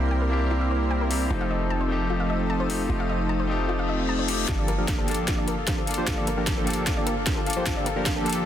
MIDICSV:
0, 0, Header, 1, 8, 480
1, 0, Start_track
1, 0, Key_signature, -2, "minor"
1, 0, Tempo, 397351
1, 1576, Time_signature, 4, 2, 24, 8
1, 10214, End_track
2, 0, Start_track
2, 0, Title_t, "Ambient pad"
2, 0, Program_c, 0, 92
2, 0, Note_on_c, 0, 70, 71
2, 0, Note_on_c, 0, 76, 66
2, 0, Note_on_c, 0, 84, 79
2, 1535, Note_off_c, 0, 70, 0
2, 1535, Note_off_c, 0, 76, 0
2, 1536, Note_off_c, 0, 84, 0
2, 1568, Note_on_c, 0, 87, 79
2, 1570, Note_on_c, 0, 77, 67
2, 1571, Note_on_c, 0, 69, 71
2, 5374, Note_off_c, 0, 77, 0
2, 5374, Note_off_c, 0, 87, 0
2, 5375, Note_off_c, 0, 69, 0
2, 5415, Note_on_c, 0, 77, 68
2, 5416, Note_on_c, 0, 69, 72
2, 9217, Note_off_c, 0, 77, 0
2, 9258, Note_on_c, 0, 79, 69
2, 10214, Note_off_c, 0, 69, 0
2, 10214, Note_off_c, 0, 79, 0
2, 10214, End_track
3, 0, Start_track
3, 0, Title_t, "Synth arpeggio sound"
3, 0, Program_c, 1, 84
3, 133, Note_on_c, 1, 79, 80
3, 214, Note_off_c, 1, 79, 0
3, 261, Note_on_c, 1, 70, 68
3, 305, Note_off_c, 1, 70, 0
3, 615, Note_on_c, 1, 64, 94
3, 663, Note_off_c, 1, 64, 0
3, 738, Note_on_c, 1, 76, 71
3, 849, Note_off_c, 1, 76, 0
3, 856, Note_on_c, 1, 72, 71
3, 974, Note_off_c, 1, 72, 0
3, 1096, Note_on_c, 1, 79, 80
3, 1176, Note_off_c, 1, 79, 0
3, 1222, Note_on_c, 1, 70, 74
3, 1266, Note_off_c, 1, 70, 0
3, 1576, Note_on_c, 1, 65, 98
3, 1624, Note_off_c, 1, 65, 0
3, 1702, Note_on_c, 1, 77, 74
3, 1811, Note_off_c, 1, 77, 0
3, 1818, Note_on_c, 1, 75, 74
3, 1935, Note_off_c, 1, 75, 0
3, 2058, Note_on_c, 1, 81, 80
3, 2137, Note_off_c, 1, 81, 0
3, 2182, Note_on_c, 1, 72, 69
3, 2225, Note_off_c, 1, 72, 0
3, 2537, Note_on_c, 1, 65, 93
3, 2584, Note_off_c, 1, 65, 0
3, 2659, Note_on_c, 1, 77, 69
3, 2769, Note_off_c, 1, 77, 0
3, 2776, Note_on_c, 1, 75, 73
3, 2894, Note_off_c, 1, 75, 0
3, 3016, Note_on_c, 1, 81, 78
3, 3096, Note_off_c, 1, 81, 0
3, 3141, Note_on_c, 1, 72, 75
3, 3185, Note_off_c, 1, 72, 0
3, 3498, Note_on_c, 1, 65, 100
3, 3545, Note_off_c, 1, 65, 0
3, 3623, Note_on_c, 1, 77, 73
3, 3732, Note_off_c, 1, 77, 0
3, 3738, Note_on_c, 1, 75, 73
3, 3855, Note_off_c, 1, 75, 0
3, 3977, Note_on_c, 1, 81, 83
3, 4056, Note_off_c, 1, 81, 0
3, 4101, Note_on_c, 1, 72, 70
3, 4145, Note_off_c, 1, 72, 0
3, 4456, Note_on_c, 1, 65, 94
3, 4504, Note_off_c, 1, 65, 0
3, 4579, Note_on_c, 1, 77, 72
3, 4690, Note_off_c, 1, 77, 0
3, 4698, Note_on_c, 1, 75, 72
3, 4815, Note_off_c, 1, 75, 0
3, 4937, Note_on_c, 1, 81, 83
3, 5016, Note_off_c, 1, 81, 0
3, 5061, Note_on_c, 1, 72, 74
3, 5105, Note_off_c, 1, 72, 0
3, 5415, Note_on_c, 1, 65, 103
3, 5463, Note_off_c, 1, 65, 0
3, 5542, Note_on_c, 1, 74, 76
3, 5651, Note_off_c, 1, 74, 0
3, 5655, Note_on_c, 1, 70, 71
3, 5773, Note_off_c, 1, 70, 0
3, 5896, Note_on_c, 1, 77, 78
3, 5975, Note_off_c, 1, 77, 0
3, 6020, Note_on_c, 1, 69, 68
3, 6065, Note_off_c, 1, 69, 0
3, 6376, Note_on_c, 1, 65, 95
3, 6424, Note_off_c, 1, 65, 0
3, 6502, Note_on_c, 1, 74, 73
3, 6611, Note_off_c, 1, 74, 0
3, 6616, Note_on_c, 1, 70, 74
3, 6734, Note_off_c, 1, 70, 0
3, 6857, Note_on_c, 1, 77, 78
3, 6936, Note_off_c, 1, 77, 0
3, 6983, Note_on_c, 1, 69, 74
3, 7026, Note_off_c, 1, 69, 0
3, 7338, Note_on_c, 1, 65, 104
3, 7385, Note_off_c, 1, 65, 0
3, 7462, Note_on_c, 1, 74, 77
3, 7571, Note_off_c, 1, 74, 0
3, 7578, Note_on_c, 1, 70, 74
3, 7695, Note_off_c, 1, 70, 0
3, 7816, Note_on_c, 1, 77, 81
3, 7896, Note_off_c, 1, 77, 0
3, 7942, Note_on_c, 1, 69, 72
3, 7986, Note_off_c, 1, 69, 0
3, 8295, Note_on_c, 1, 65, 96
3, 8343, Note_off_c, 1, 65, 0
3, 8419, Note_on_c, 1, 74, 76
3, 8529, Note_off_c, 1, 74, 0
3, 8535, Note_on_c, 1, 70, 76
3, 8654, Note_off_c, 1, 70, 0
3, 8776, Note_on_c, 1, 77, 82
3, 8856, Note_off_c, 1, 77, 0
3, 8900, Note_on_c, 1, 69, 76
3, 8945, Note_off_c, 1, 69, 0
3, 9256, Note_on_c, 1, 65, 102
3, 9304, Note_off_c, 1, 65, 0
3, 9380, Note_on_c, 1, 74, 77
3, 9490, Note_off_c, 1, 74, 0
3, 9495, Note_on_c, 1, 70, 74
3, 9613, Note_off_c, 1, 70, 0
3, 9738, Note_on_c, 1, 77, 85
3, 9817, Note_off_c, 1, 77, 0
3, 9862, Note_on_c, 1, 69, 69
3, 9905, Note_off_c, 1, 69, 0
3, 10214, End_track
4, 0, Start_track
4, 0, Title_t, "Analog polysynth"
4, 0, Program_c, 2, 90
4, 0, Note_on_c, 2, 55, 76
4, 0, Note_on_c, 2, 58, 68
4, 0, Note_on_c, 2, 60, 69
4, 0, Note_on_c, 2, 64, 69
4, 0, Note_on_c, 2, 70, 83
4, 1546, Note_off_c, 2, 55, 0
4, 1546, Note_off_c, 2, 58, 0
4, 1546, Note_off_c, 2, 60, 0
4, 1546, Note_off_c, 2, 64, 0
4, 1546, Note_off_c, 2, 70, 0
4, 1576, Note_on_c, 2, 57, 69
4, 1576, Note_on_c, 2, 63, 69
4, 1576, Note_on_c, 2, 69, 84
4, 1577, Note_on_c, 2, 60, 72
4, 1578, Note_on_c, 2, 53, 78
4, 5388, Note_off_c, 2, 57, 0
4, 5388, Note_off_c, 2, 63, 0
4, 5388, Note_off_c, 2, 69, 0
4, 5389, Note_off_c, 2, 53, 0
4, 5389, Note_off_c, 2, 60, 0
4, 5414, Note_on_c, 2, 53, 90
4, 5414, Note_on_c, 2, 62, 81
4, 5415, Note_on_c, 2, 69, 104
4, 5671, Note_off_c, 2, 53, 0
4, 5671, Note_off_c, 2, 62, 0
4, 5671, Note_off_c, 2, 69, 0
4, 5778, Note_on_c, 2, 53, 86
4, 5778, Note_on_c, 2, 58, 76
4, 5778, Note_on_c, 2, 62, 78
4, 5778, Note_on_c, 2, 70, 97
4, 5779, Note_on_c, 2, 67, 77
4, 5989, Note_off_c, 2, 58, 0
4, 5989, Note_off_c, 2, 62, 0
4, 5989, Note_off_c, 2, 70, 0
4, 5990, Note_off_c, 2, 53, 0
4, 5990, Note_off_c, 2, 67, 0
4, 6017, Note_on_c, 2, 67, 88
4, 6018, Note_on_c, 2, 53, 96
4, 6018, Note_on_c, 2, 58, 86
4, 6018, Note_on_c, 2, 62, 86
4, 6018, Note_on_c, 2, 69, 105
4, 6347, Note_off_c, 2, 53, 0
4, 6347, Note_off_c, 2, 58, 0
4, 6347, Note_off_c, 2, 62, 0
4, 6347, Note_off_c, 2, 67, 0
4, 6347, Note_off_c, 2, 69, 0
4, 6855, Note_on_c, 2, 53, 75
4, 6855, Note_on_c, 2, 58, 67
4, 6855, Note_on_c, 2, 62, 67
4, 6855, Note_on_c, 2, 67, 68
4, 6855, Note_on_c, 2, 72, 80
4, 7018, Note_off_c, 2, 53, 0
4, 7018, Note_off_c, 2, 58, 0
4, 7018, Note_off_c, 2, 62, 0
4, 7018, Note_off_c, 2, 67, 0
4, 7018, Note_off_c, 2, 72, 0
4, 7221, Note_on_c, 2, 53, 93
4, 7221, Note_on_c, 2, 58, 88
4, 7221, Note_on_c, 2, 67, 86
4, 7221, Note_on_c, 2, 72, 108
4, 7222, Note_on_c, 2, 62, 87
4, 7319, Note_off_c, 2, 53, 0
4, 7319, Note_off_c, 2, 58, 0
4, 7319, Note_off_c, 2, 62, 0
4, 7319, Note_off_c, 2, 67, 0
4, 7319, Note_off_c, 2, 72, 0
4, 7337, Note_on_c, 2, 53, 93
4, 7337, Note_on_c, 2, 58, 86
4, 7592, Note_off_c, 2, 53, 0
4, 7592, Note_off_c, 2, 58, 0
4, 7700, Note_on_c, 2, 58, 80
4, 7700, Note_on_c, 2, 62, 81
4, 7700, Note_on_c, 2, 70, 99
4, 7701, Note_on_c, 2, 53, 88
4, 7701, Note_on_c, 2, 67, 79
4, 7910, Note_off_c, 2, 58, 0
4, 7910, Note_off_c, 2, 62, 0
4, 7910, Note_off_c, 2, 67, 0
4, 7910, Note_off_c, 2, 70, 0
4, 7911, Note_off_c, 2, 53, 0
4, 7939, Note_on_c, 2, 58, 88
4, 7940, Note_on_c, 2, 53, 99
4, 7940, Note_on_c, 2, 62, 87
4, 7940, Note_on_c, 2, 67, 90
4, 7940, Note_on_c, 2, 69, 108
4, 8268, Note_off_c, 2, 53, 0
4, 8268, Note_off_c, 2, 58, 0
4, 8268, Note_off_c, 2, 62, 0
4, 8268, Note_off_c, 2, 67, 0
4, 8268, Note_off_c, 2, 69, 0
4, 8296, Note_on_c, 2, 53, 78
4, 8297, Note_on_c, 2, 58, 74
4, 8297, Note_on_c, 2, 62, 73
4, 8631, Note_off_c, 2, 53, 0
4, 8631, Note_off_c, 2, 58, 0
4, 8631, Note_off_c, 2, 62, 0
4, 8775, Note_on_c, 2, 53, 76
4, 8775, Note_on_c, 2, 58, 67
4, 8775, Note_on_c, 2, 62, 68
4, 8776, Note_on_c, 2, 72, 83
4, 8938, Note_off_c, 2, 53, 0
4, 8938, Note_off_c, 2, 58, 0
4, 8938, Note_off_c, 2, 62, 0
4, 8938, Note_off_c, 2, 72, 0
4, 9139, Note_on_c, 2, 67, 88
4, 9140, Note_on_c, 2, 53, 96
4, 9140, Note_on_c, 2, 62, 89
4, 9140, Note_on_c, 2, 72, 107
4, 9141, Note_on_c, 2, 58, 91
4, 9238, Note_off_c, 2, 62, 0
4, 9238, Note_off_c, 2, 67, 0
4, 9238, Note_off_c, 2, 72, 0
4, 9239, Note_off_c, 2, 53, 0
4, 9239, Note_off_c, 2, 58, 0
4, 9253, Note_on_c, 2, 53, 90
4, 9253, Note_on_c, 2, 62, 82
4, 9253, Note_on_c, 2, 67, 86
4, 9253, Note_on_c, 2, 69, 100
4, 9254, Note_on_c, 2, 58, 84
4, 9510, Note_off_c, 2, 53, 0
4, 9510, Note_off_c, 2, 67, 0
4, 9510, Note_off_c, 2, 69, 0
4, 9511, Note_off_c, 2, 58, 0
4, 9511, Note_off_c, 2, 62, 0
4, 9617, Note_on_c, 2, 53, 87
4, 9617, Note_on_c, 2, 67, 81
4, 9618, Note_on_c, 2, 58, 79
4, 9618, Note_on_c, 2, 62, 82
4, 9618, Note_on_c, 2, 70, 97
4, 9829, Note_off_c, 2, 53, 0
4, 9829, Note_off_c, 2, 58, 0
4, 9829, Note_off_c, 2, 62, 0
4, 9829, Note_off_c, 2, 67, 0
4, 9829, Note_off_c, 2, 70, 0
4, 9859, Note_on_c, 2, 53, 96
4, 9859, Note_on_c, 2, 58, 88
4, 9859, Note_on_c, 2, 62, 90
4, 9859, Note_on_c, 2, 67, 86
4, 9860, Note_on_c, 2, 69, 107
4, 10188, Note_off_c, 2, 53, 0
4, 10188, Note_off_c, 2, 58, 0
4, 10188, Note_off_c, 2, 62, 0
4, 10188, Note_off_c, 2, 67, 0
4, 10188, Note_off_c, 2, 69, 0
4, 10214, End_track
5, 0, Start_track
5, 0, Title_t, "Grand piano"
5, 0, Program_c, 3, 0
5, 0, Control_c, 3, 64, 127
5, 0, Note_on_c, 3, 58, 72
5, 0, Note_on_c, 3, 62, 67
5, 0, Note_on_c, 3, 64, 66
5, 0, Note_on_c, 3, 67, 78
5, 331, Note_off_c, 3, 58, 0
5, 344, Note_off_c, 3, 62, 0
5, 349, Note_on_c, 3, 58, 83
5, 351, Note_off_c, 3, 64, 0
5, 359, Note_off_c, 3, 67, 0
5, 365, Note_on_c, 3, 62, 75
5, 382, Note_on_c, 3, 64, 77
5, 397, Note_on_c, 3, 67, 90
5, 1299, Note_off_c, 3, 58, 0
5, 1308, Note_off_c, 3, 62, 0
5, 1316, Note_off_c, 3, 64, 0
5, 1323, Note_off_c, 3, 67, 0
5, 1324, Note_on_c, 3, 58, 71
5, 1331, Note_on_c, 3, 62, 64
5, 1338, Note_on_c, 3, 64, 65
5, 1348, Note_on_c, 3, 67, 82
5, 1542, Note_off_c, 3, 58, 0
5, 1546, Note_off_c, 3, 62, 0
5, 1549, Note_off_c, 3, 64, 0
5, 1553, Note_on_c, 3, 57, 71
5, 1554, Note_off_c, 3, 67, 0
5, 1568, Note_on_c, 3, 60, 68
5, 1584, Note_on_c, 3, 63, 68
5, 1591, Control_c, 3, 64, 0
5, 1600, Note_on_c, 3, 67, 80
5, 1828, Control_c, 3, 64, 127
5, 2255, Note_off_c, 3, 57, 0
5, 2264, Note_off_c, 3, 60, 0
5, 2272, Note_off_c, 3, 63, 0
5, 2273, Note_on_c, 3, 57, 80
5, 2280, Note_off_c, 3, 67, 0
5, 2289, Note_on_c, 3, 60, 73
5, 2304, Note_on_c, 3, 63, 72
5, 2320, Note_on_c, 3, 67, 87
5, 3217, Note_off_c, 3, 57, 0
5, 3224, Note_off_c, 3, 60, 0
5, 3232, Note_off_c, 3, 63, 0
5, 3240, Note_off_c, 3, 67, 0
5, 3246, Note_on_c, 3, 57, 69
5, 3255, Note_on_c, 3, 60, 64
5, 3263, Note_on_c, 3, 63, 60
5, 3271, Note_on_c, 3, 67, 74
5, 3453, Note_off_c, 3, 57, 0
5, 3468, Note_off_c, 3, 60, 0
5, 3471, Note_on_c, 3, 57, 74
5, 3472, Note_off_c, 3, 63, 0
5, 3476, Note_off_c, 3, 67, 0
5, 3489, Note_on_c, 3, 60, 68
5, 3505, Note_on_c, 3, 63, 67
5, 3520, Note_on_c, 3, 67, 81
5, 4173, Note_off_c, 3, 57, 0
5, 4185, Note_off_c, 3, 60, 0
5, 4192, Note_off_c, 3, 63, 0
5, 4192, Note_on_c, 3, 57, 83
5, 4200, Note_off_c, 3, 67, 0
5, 4207, Note_on_c, 3, 60, 78
5, 4224, Note_on_c, 3, 63, 77
5, 4240, Note_on_c, 3, 67, 97
5, 5141, Note_off_c, 3, 57, 0
5, 5148, Note_off_c, 3, 60, 0
5, 5156, Note_off_c, 3, 63, 0
5, 5161, Note_on_c, 3, 57, 74
5, 5165, Note_off_c, 3, 67, 0
5, 5170, Note_on_c, 3, 60, 66
5, 5177, Note_on_c, 3, 63, 67
5, 5185, Note_on_c, 3, 67, 80
5, 5381, Note_off_c, 3, 57, 0
5, 5385, Note_off_c, 3, 60, 0
5, 5389, Note_off_c, 3, 63, 0
5, 5389, Note_on_c, 3, 58, 75
5, 5393, Note_off_c, 3, 67, 0
5, 5405, Note_on_c, 3, 62, 67
5, 5429, Control_c, 3, 64, 0
5, 5437, Note_on_c, 3, 69, 83
5, 5631, Control_c, 3, 64, 127
5, 6091, Note_off_c, 3, 58, 0
5, 6103, Note_off_c, 3, 62, 0
5, 6109, Note_on_c, 3, 58, 81
5, 6119, Note_off_c, 3, 69, 0
5, 6126, Note_on_c, 3, 62, 73
5, 6141, Note_on_c, 3, 65, 74
5, 6157, Note_on_c, 3, 69, 90
5, 7055, Note_off_c, 3, 58, 0
5, 7063, Note_off_c, 3, 62, 0
5, 7071, Note_off_c, 3, 65, 0
5, 7079, Note_off_c, 3, 69, 0
5, 7083, Note_on_c, 3, 58, 72
5, 7089, Note_on_c, 3, 62, 64
5, 7099, Note_on_c, 3, 65, 64
5, 7107, Note_on_c, 3, 69, 74
5, 7293, Note_off_c, 3, 58, 0
5, 7305, Note_off_c, 3, 62, 0
5, 7310, Note_off_c, 3, 65, 0
5, 7311, Note_on_c, 3, 58, 75
5, 7313, Note_off_c, 3, 69, 0
5, 7326, Note_on_c, 3, 62, 71
5, 7359, Note_on_c, 3, 69, 84
5, 8013, Note_off_c, 3, 58, 0
5, 8023, Note_off_c, 3, 62, 0
5, 8031, Note_on_c, 3, 58, 86
5, 8039, Note_off_c, 3, 69, 0
5, 8048, Note_on_c, 3, 62, 80
5, 8065, Note_on_c, 3, 65, 81
5, 8079, Note_on_c, 3, 69, 94
5, 8980, Note_off_c, 3, 58, 0
5, 8989, Note_off_c, 3, 62, 0
5, 8997, Note_off_c, 3, 65, 0
5, 9004, Note_off_c, 3, 69, 0
5, 9005, Note_on_c, 3, 58, 75
5, 9012, Note_on_c, 3, 62, 69
5, 9020, Note_on_c, 3, 65, 68
5, 9028, Note_on_c, 3, 69, 82
5, 9213, Note_off_c, 3, 58, 0
5, 9226, Note_off_c, 3, 62, 0
5, 9230, Note_off_c, 3, 65, 0
5, 9231, Note_on_c, 3, 58, 78
5, 9234, Note_off_c, 3, 69, 0
5, 9248, Note_on_c, 3, 62, 71
5, 9280, Note_on_c, 3, 69, 86
5, 9934, Note_off_c, 3, 58, 0
5, 9944, Note_off_c, 3, 62, 0
5, 9952, Note_on_c, 3, 58, 85
5, 9960, Note_off_c, 3, 69, 0
5, 9968, Note_on_c, 3, 62, 77
5, 9984, Note_on_c, 3, 65, 75
5, 10000, Note_on_c, 3, 69, 95
5, 10214, Note_off_c, 3, 58, 0
5, 10214, Note_off_c, 3, 62, 0
5, 10214, Note_off_c, 3, 65, 0
5, 10214, Note_off_c, 3, 69, 0
5, 10214, End_track
6, 0, Start_track
6, 0, Title_t, "808-style bass"
6, 0, Program_c, 4, 38
6, 0, Note_on_c, 4, 36, 82
6, 1552, Note_off_c, 4, 36, 0
6, 1574, Note_on_c, 4, 29, 81
6, 3472, Note_off_c, 4, 29, 0
6, 3495, Note_on_c, 4, 29, 86
6, 5393, Note_off_c, 4, 29, 0
6, 5416, Note_on_c, 4, 31, 86
6, 7313, Note_off_c, 4, 31, 0
6, 7335, Note_on_c, 4, 31, 88
6, 9233, Note_off_c, 4, 31, 0
6, 9256, Note_on_c, 4, 31, 86
6, 10214, Note_off_c, 4, 31, 0
6, 10214, End_track
7, 0, Start_track
7, 0, Title_t, "Reverse cymbal"
7, 0, Program_c, 5, 119
7, 4455, Note_on_c, 5, 60, 69
7, 5416, Note_off_c, 5, 60, 0
7, 10214, End_track
8, 0, Start_track
8, 0, Title_t, "Drums"
8, 1336, Note_on_c, 9, 46, 52
8, 1457, Note_off_c, 9, 46, 0
8, 3259, Note_on_c, 9, 46, 58
8, 3380, Note_off_c, 9, 46, 0
8, 5175, Note_on_c, 9, 46, 59
8, 5296, Note_off_c, 9, 46, 0
8, 5415, Note_on_c, 9, 36, 88
8, 5416, Note_on_c, 9, 38, 45
8, 5416, Note_on_c, 9, 42, 75
8, 5536, Note_off_c, 9, 36, 0
8, 5537, Note_off_c, 9, 38, 0
8, 5537, Note_off_c, 9, 42, 0
8, 5655, Note_on_c, 9, 42, 63
8, 5776, Note_off_c, 9, 42, 0
8, 5895, Note_on_c, 9, 36, 91
8, 5897, Note_on_c, 9, 38, 45
8, 5897, Note_on_c, 9, 42, 75
8, 6016, Note_off_c, 9, 36, 0
8, 6018, Note_off_c, 9, 38, 0
8, 6018, Note_off_c, 9, 42, 0
8, 6136, Note_on_c, 9, 42, 49
8, 6177, Note_off_c, 9, 42, 0
8, 6177, Note_on_c, 9, 42, 63
8, 6214, Note_off_c, 9, 42, 0
8, 6214, Note_on_c, 9, 42, 78
8, 6335, Note_off_c, 9, 42, 0
8, 6375, Note_on_c, 9, 36, 89
8, 6375, Note_on_c, 9, 38, 48
8, 6375, Note_on_c, 9, 42, 77
8, 6496, Note_off_c, 9, 36, 0
8, 6496, Note_off_c, 9, 38, 0
8, 6496, Note_off_c, 9, 42, 0
8, 6615, Note_on_c, 9, 42, 62
8, 6736, Note_off_c, 9, 42, 0
8, 6854, Note_on_c, 9, 38, 50
8, 6854, Note_on_c, 9, 42, 78
8, 6855, Note_on_c, 9, 36, 95
8, 6975, Note_off_c, 9, 38, 0
8, 6975, Note_off_c, 9, 42, 0
8, 6976, Note_off_c, 9, 36, 0
8, 7095, Note_on_c, 9, 42, 48
8, 7136, Note_off_c, 9, 42, 0
8, 7136, Note_on_c, 9, 42, 62
8, 7176, Note_off_c, 9, 42, 0
8, 7176, Note_on_c, 9, 42, 76
8, 7297, Note_off_c, 9, 42, 0
8, 7335, Note_on_c, 9, 36, 89
8, 7336, Note_on_c, 9, 38, 52
8, 7336, Note_on_c, 9, 42, 76
8, 7456, Note_off_c, 9, 36, 0
8, 7457, Note_off_c, 9, 38, 0
8, 7457, Note_off_c, 9, 42, 0
8, 7576, Note_on_c, 9, 42, 62
8, 7697, Note_off_c, 9, 42, 0
8, 7815, Note_on_c, 9, 36, 92
8, 7815, Note_on_c, 9, 38, 50
8, 7815, Note_on_c, 9, 42, 76
8, 7936, Note_off_c, 9, 36, 0
8, 7936, Note_off_c, 9, 38, 0
8, 7936, Note_off_c, 9, 42, 0
8, 8057, Note_on_c, 9, 42, 49
8, 8098, Note_off_c, 9, 42, 0
8, 8098, Note_on_c, 9, 42, 66
8, 8135, Note_off_c, 9, 42, 0
8, 8135, Note_on_c, 9, 42, 82
8, 8256, Note_off_c, 9, 42, 0
8, 8295, Note_on_c, 9, 36, 89
8, 8296, Note_on_c, 9, 38, 53
8, 8296, Note_on_c, 9, 42, 79
8, 8416, Note_off_c, 9, 36, 0
8, 8417, Note_off_c, 9, 38, 0
8, 8417, Note_off_c, 9, 42, 0
8, 8536, Note_on_c, 9, 42, 67
8, 8657, Note_off_c, 9, 42, 0
8, 8776, Note_on_c, 9, 36, 95
8, 8776, Note_on_c, 9, 38, 55
8, 8776, Note_on_c, 9, 42, 81
8, 8897, Note_off_c, 9, 36, 0
8, 8897, Note_off_c, 9, 38, 0
8, 8897, Note_off_c, 9, 42, 0
8, 9017, Note_on_c, 9, 42, 48
8, 9059, Note_off_c, 9, 42, 0
8, 9059, Note_on_c, 9, 42, 63
8, 9097, Note_off_c, 9, 42, 0
8, 9097, Note_on_c, 9, 42, 79
8, 9217, Note_off_c, 9, 42, 0
8, 9256, Note_on_c, 9, 36, 92
8, 9257, Note_on_c, 9, 38, 57
8, 9257, Note_on_c, 9, 42, 75
8, 9377, Note_off_c, 9, 36, 0
8, 9378, Note_off_c, 9, 38, 0
8, 9378, Note_off_c, 9, 42, 0
8, 9496, Note_on_c, 9, 42, 65
8, 9617, Note_off_c, 9, 42, 0
8, 9736, Note_on_c, 9, 36, 92
8, 9736, Note_on_c, 9, 38, 56
8, 9736, Note_on_c, 9, 42, 73
8, 9857, Note_off_c, 9, 36, 0
8, 9857, Note_off_c, 9, 38, 0
8, 9857, Note_off_c, 9, 42, 0
8, 9978, Note_on_c, 9, 42, 49
8, 10020, Note_off_c, 9, 42, 0
8, 10020, Note_on_c, 9, 42, 62
8, 10057, Note_off_c, 9, 42, 0
8, 10057, Note_on_c, 9, 42, 81
8, 10178, Note_off_c, 9, 42, 0
8, 10214, End_track
0, 0, End_of_file